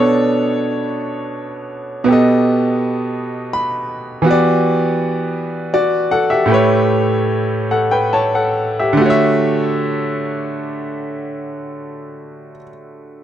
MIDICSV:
0, 0, Header, 1, 2, 480
1, 0, Start_track
1, 0, Key_signature, 2, "major"
1, 0, Tempo, 728155
1, 1363, Time_signature, 6, 3, 24, 8
1, 3285, Tempo, 755668
1, 4245, Tempo, 795756
1, 4725, Tempo, 858369
1, 5685, Tempo, 909091
1, 7918, End_track
2, 0, Start_track
2, 0, Title_t, "Grand piano"
2, 0, Program_c, 0, 0
2, 0, Note_on_c, 0, 47, 81
2, 0, Note_on_c, 0, 59, 72
2, 0, Note_on_c, 0, 62, 70
2, 0, Note_on_c, 0, 69, 82
2, 0, Note_on_c, 0, 73, 97
2, 56, Control_c, 0, 64, 127
2, 1327, Note_off_c, 0, 47, 0
2, 1334, Note_off_c, 0, 59, 0
2, 1341, Note_off_c, 0, 62, 0
2, 1346, Note_on_c, 0, 47, 93
2, 1348, Note_off_c, 0, 69, 0
2, 1356, Note_off_c, 0, 73, 0
2, 1358, Note_on_c, 0, 59, 82
2, 1371, Control_c, 0, 64, 0
2, 1373, Note_on_c, 0, 67, 74
2, 1387, Note_on_c, 0, 69, 72
2, 1401, Note_on_c, 0, 75, 91
2, 1470, Control_c, 0, 64, 127
2, 2329, Note_on_c, 0, 83, 75
2, 2766, Note_off_c, 0, 47, 0
2, 2772, Note_off_c, 0, 59, 0
2, 2779, Note_off_c, 0, 83, 0
2, 2780, Note_off_c, 0, 67, 0
2, 2781, Note_on_c, 0, 52, 83
2, 2787, Note_off_c, 0, 69, 0
2, 2794, Note_off_c, 0, 75, 0
2, 2796, Note_on_c, 0, 59, 86
2, 2810, Control_c, 0, 64, 0
2, 2810, Note_on_c, 0, 66, 81
2, 2824, Note_on_c, 0, 67, 69
2, 2838, Note_on_c, 0, 74, 96
2, 2926, Control_c, 0, 64, 127
2, 3743, Note_off_c, 0, 66, 0
2, 3750, Note_off_c, 0, 67, 0
2, 3754, Note_off_c, 0, 74, 0
2, 3764, Note_on_c, 0, 74, 79
2, 3767, Note_on_c, 0, 66, 63
2, 3990, Note_off_c, 0, 74, 0
2, 3992, Note_off_c, 0, 66, 0
2, 4003, Note_on_c, 0, 78, 81
2, 4007, Note_on_c, 0, 69, 63
2, 4117, Note_off_c, 0, 78, 0
2, 4120, Note_off_c, 0, 69, 0
2, 4122, Note_on_c, 0, 76, 72
2, 4127, Note_on_c, 0, 67, 61
2, 4209, Note_off_c, 0, 52, 0
2, 4217, Note_off_c, 0, 59, 0
2, 4221, Note_on_c, 0, 45, 85
2, 4233, Note_on_c, 0, 57, 78
2, 4238, Note_off_c, 0, 67, 0
2, 4247, Note_on_c, 0, 67, 77
2, 4252, Control_c, 0, 64, 0
2, 4259, Note_on_c, 0, 71, 78
2, 4272, Note_on_c, 0, 73, 94
2, 4351, Note_off_c, 0, 76, 0
2, 4367, Control_c, 0, 64, 127
2, 4942, Note_off_c, 0, 67, 0
2, 4948, Note_off_c, 0, 71, 0
2, 4954, Note_off_c, 0, 73, 0
2, 4960, Note_on_c, 0, 78, 70
2, 4962, Note_on_c, 0, 69, 58
2, 5069, Note_off_c, 0, 78, 0
2, 5070, Note_off_c, 0, 69, 0
2, 5074, Note_on_c, 0, 79, 72
2, 5079, Note_on_c, 0, 71, 61
2, 5186, Note_off_c, 0, 79, 0
2, 5189, Note_off_c, 0, 71, 0
2, 5194, Note_on_c, 0, 81, 71
2, 5197, Note_on_c, 0, 73, 64
2, 5307, Note_off_c, 0, 81, 0
2, 5309, Note_off_c, 0, 73, 0
2, 5317, Note_on_c, 0, 78, 63
2, 5318, Note_on_c, 0, 69, 54
2, 5549, Note_off_c, 0, 69, 0
2, 5549, Note_off_c, 0, 78, 0
2, 5566, Note_on_c, 0, 76, 66
2, 5570, Note_on_c, 0, 67, 60
2, 5642, Note_on_c, 0, 50, 90
2, 5651, Note_off_c, 0, 45, 0
2, 5657, Note_off_c, 0, 57, 0
2, 5666, Note_on_c, 0, 57, 88
2, 5689, Note_on_c, 0, 66, 82
2, 5692, Control_c, 0, 64, 0
2, 5710, Note_on_c, 0, 73, 79
2, 5726, Note_off_c, 0, 76, 0
2, 5734, Note_on_c, 0, 76, 98
2, 5791, Control_c, 0, 64, 127
2, 5798, Note_off_c, 0, 67, 0
2, 7528, Note_off_c, 0, 50, 0
2, 7551, Note_off_c, 0, 57, 0
2, 7573, Note_off_c, 0, 66, 0
2, 7594, Note_off_c, 0, 73, 0
2, 7618, Note_off_c, 0, 76, 0
2, 7918, End_track
0, 0, End_of_file